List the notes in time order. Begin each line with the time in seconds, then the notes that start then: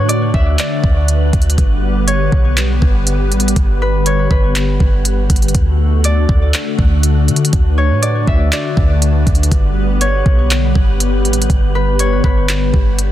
Already playing: A2 D3 A3 D4 F#4 B4 C#5 F#5
0.09 D5, closed hi-hat
0.34 D2 E5, kick
0.59 D5, clap, closed hi-hat
0.84 D2, kick
1.08 closed hi-hat
1.33 D2, kick, closed hi-hat
1.42 closed hi-hat
1.50 closed hi-hat
1.58 G1 D3 G3 B3 G4, kick, closed hi-hat
2.07 C#5, closed hi-hat
2.32 B1, kick
2.57 clap, closed hi-hat
2.82 G1, kick
3.07 closed hi-hat
3.32 A1, closed hi-hat
3.40 closed hi-hat
3.48 closed hi-hat
3.56 G1, kick, closed hi-hat
3.82 B4
4.06 C#5, closed hi-hat
4.31 G1 B4, kick
4.55 clap, closed hi-hat
4.80 G1, kick
5.05 closed hi-hat
5.30 G1, kick, closed hi-hat
5.36 closed hi-hat
5.42 closed hi-hat
5.48 closed hi-hat
5.55 D2 A3 D4 F#4 A4 F#5, kick, closed hi-hat
6.04 D5, closed hi-hat
6.29 D2, kick
6.54 clap, closed hi-hat
6.79 D2, kick
7.03 closed hi-hat
7.28 D3, closed hi-hat
7.36 closed hi-hat
7.45 closed hi-hat
7.53 D2 B4, kick, closed hi-hat
7.78 C#5
7.90 A2
8.02 D5, closed hi-hat
8.27 D2 E5, kick
8.52 D5, clap, closed hi-hat
8.77 D2, kick
9.02 closed hi-hat
9.27 D2, kick, closed hi-hat
9.35 closed hi-hat
9.43 closed hi-hat
9.51 G1 G3 B3 G4 B4, kick, closed hi-hat
10.01 C#5, closed hi-hat
10.26 B1, kick
10.51 clap, closed hi-hat
10.75 G1, kick
11.00 closed hi-hat
11.25 A1, closed hi-hat
11.33 closed hi-hat
11.42 closed hi-hat
11.50 G1, kick, closed hi-hat
11.75 B4
11.99 C#5, closed hi-hat
12.24 G1 B4, kick
12.49 clap, closed hi-hat
12.74 G1, kick
12.99 closed hi-hat